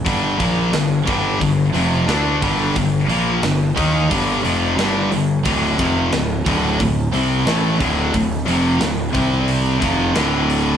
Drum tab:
HH |oooooooo|oooooooo|oooooooo|oooooooo|
SD |--o---o-|--o---o-|--o---o-|--o---o-|
BD |oo-oo--o|o--oo---|oo-oo--o|o--o-o--|